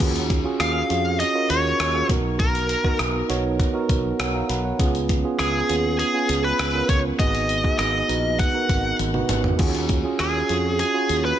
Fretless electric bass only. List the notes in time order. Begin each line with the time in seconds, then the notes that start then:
0.00 D#2
0.60 D#2
0.90 F2
1.50 D#2
1.80 D#2
2.09 B1
2.99 B1
3.30 B1
3.90 B1
4.19 B1
4.49 B1
4.80 C#2
5.40 C#2
5.70 D#2
6.29 C#2
6.59 C#2
6.89 C#2
7.19 G#1
7.79 G#1
8.09 A#1
8.70 G#1
8.99 G#1
9.30 G#1
9.59 D#2
10.20 D#2
10.50 F2
11.10 D#2